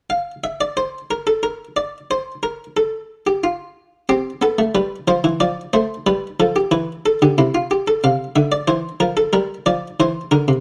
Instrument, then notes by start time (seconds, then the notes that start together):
harpsichord
0.10 F5
0.44 E5
0.61 D5
0.77 C5
1.11 A#4
1.27 A4
1.43 A#4
1.76 D5
2.11 C5
2.43 A#4
2.77 A4
3.27 G4
3.44 F4
4.09 C4 G4
4.42 B3 A4
4.58 A3
4.75 G3 B4
5.08 F3 C5
5.24 E3
5.40 F3 D5
5.73 A3 C5
6.07 G3 B4
6.40 F3 A4
6.56 G4
6.71 E3 B4
7.06 A4
7.22 D3 G4
7.38 C3 E4
7.55 F4
7.71 G4
7.88 A4
8.04 C3 F5
8.36 D3 E5
8.52 D5
8.68 E3 C5
9.00 F3 A#4
9.17 A4
9.33 G3 A#4
9.66 F3 D5
10.00 E3 C5
10.31 D3 A#4
10.48 C3